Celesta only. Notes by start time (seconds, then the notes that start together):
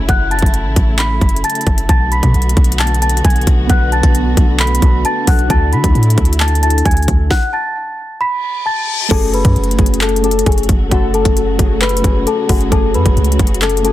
0.09 F#5 F#6
0.31 A5 A6
0.99 B5 B6
1.44 A5 A6
1.89 A5 A6
2.12 B5 B6
2.80 A5 A6
3.02 A5 A6
3.25 G#5 G#6
3.70 F#5 F#6
3.92 A5 A6
4.60 B5 B6
5.05 A5 A6
5.28 F#5 F#6
5.50 A5 A6
5.73 B5 B6
6.40 A5 A6
6.63 A5 A6
6.85 G#5 G#6
7.30 F#5 F#6
7.53 A5 A6
8.21 B5 B6
8.66 A5 A6
9.11 A4 A5
9.34 B4 B5
10.01 A4 A5
10.24 A4 A5
10.46 G#4 G#5
10.91 F#4 F#5
11.14 A4 A5
11.81 B4 B5
12.27 A4 A5
12.49 F#4 F#5
12.72 A4 A5
12.94 B4 B5
13.62 A4 A5
13.84 A4 A5